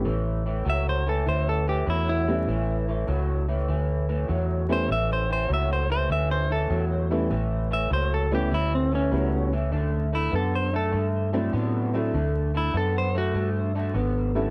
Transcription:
0.05 A1 A2 E3
0.46 A2 E3
0.65 C#2 A2 F#3
0.70 E5
0.89 C5
1.07 A2 E3 A4
1.26 D2 A2 E3 C5
1.49 A4
1.67 A2 E3 G4
1.86 E2 A2 F#3 E4
2.09 E4
2.28 A2 E3 G3 A3 B3 C#4 E4
2.48 A1 A2 E3
2.88 A2 E3
3.07 C#2 A2 F#3
3.49 A2 E3
3.68 D2 A2 E3
4.09 A2 E3
4.28 E2 A2 F#3
4.69 A2 E3 G3 A3 B3 C#4 E4 C5
4.88 A1 A2 E3 E5
5.13 C5
5.29 A2 E3 C5
5.48 C#2 A2 F#3
5.54 E5
5.73 C5
5.90 A2 E3 C5
6.09 D2 A2 E3 E5
6.31 C5
6.50 A2 E3 A4
6.70 E2 A2 F#3
7.10 A2 E3 G3 A3 B3 C#4 E4
7.30 A1 A2 E3
7.71 A2 E3 E5
7.90 C#2 A2 F#3 C5
8.14 A4
8.31 A2 E3 G3 A3 B3 C#4 E4 G4
8.51 D2 A2 E3 E4
8.75 C4
8.91 A2 E3 C#4
9.11 C#2 A2 F#3 G3 A3 B3 C#4 E4
9.53 A2 E3
9.72 D2 D3 A3
10.13 D3 A3 E4
10.32 F#2 D3 B3 A4
10.55 C5
10.73 D3 A3 A4
10.92 G2 D3 A3
11.33 D3 F#3 A3 C4 D4 E4
11.53 A2 D3 B3
11.94 D3 F#3 A3 C4 D4 E4
12.14 D2 D3 A3
12.54 D3 A3 E4
12.74 F#2 D3 B3 A4
12.98 C5
13.14 D3 A3 F#4
13.34 G2 D3 A3
13.75 D3 A3
13.94 G#1 D3 B3
14.35 D3 G3 A3 B3 C#4 E4

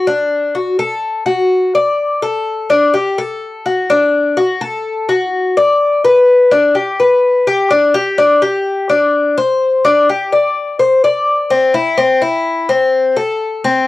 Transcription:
0.07 D4
0.55 F#4
0.79 A4
1.26 F#4
1.75 D5
2.22 A4
2.70 D4
2.94 G4
3.18 A4
3.66 F#4
3.90 D4
4.37 F#4
4.61 A4
5.09 F#4
5.57 D5
6.04 B4
6.51 D4
6.75 G4
7.00 B4
7.47 G4
7.71 D4
7.94 G4
8.18 D4
8.42 G4
8.90 D4
9.37 C5
9.85 D4
10.09 G4
10.32 D5
10.79 C5
11.04 D5
11.50 C4
11.74 E4
11.98 C4
12.22 E4
12.69 C4
13.16 A4
13.64 C4

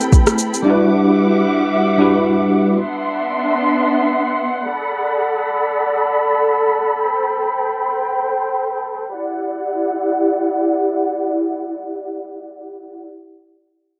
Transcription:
Already playing: A3 C4 E4 G4 A4 B4 G5 B5
0.01 shaker
0.13 kick, shaker
0.27 cross-stick, shaker
0.38 shaker
0.54 shaker
0.62 G3 D4 E4 E5 F#5 D6
0.68 F#4 B4
1.97 G3 D4 E4 F#4 B4
2.78 B3 D4 E5 F#5 C6
4.64 A4 D5 B5
7.03 C5 G5
9.15 E4 G4 D5 F#5

